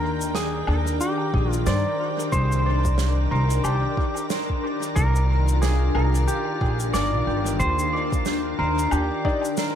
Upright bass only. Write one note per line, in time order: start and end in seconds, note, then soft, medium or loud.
0.00 0.65 D#2 medium
0.68 0.97 D#2 medium
1.34 1.68 A#1 medium
1.67 1.84 G2 loud
2.33 3.29 C2 loud
3.31 3.61 C2 medium
3.64 3.82 C2 medium
4.96 5.93 C2 loud
5.95 6.25 C2 medium
6.61 6.91 A#1 medium
6.94 7.13 G1 medium
7.13 7.25 A#1 medium
7.27 7.57 G1 medium
7.60 8.56 D#2 loud
8.59 8.89 D#2 medium
8.92 9.09 D#2 medium